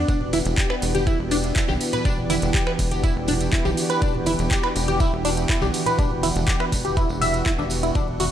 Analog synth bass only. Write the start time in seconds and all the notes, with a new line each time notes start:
0.08 E1
0.45 E1
0.82 E1
1.19 E1
1.68 B1
2.05 E1
2.42 E1
2.79 E1
3.16 E1
3.65 B1
4.02 E1
4.39 E1
4.76 E1
5.13 E1
5.62 B1
5.99 E1
6.36 E1
6.72 E1
7.09 E1
7.59 E1
7.95 E1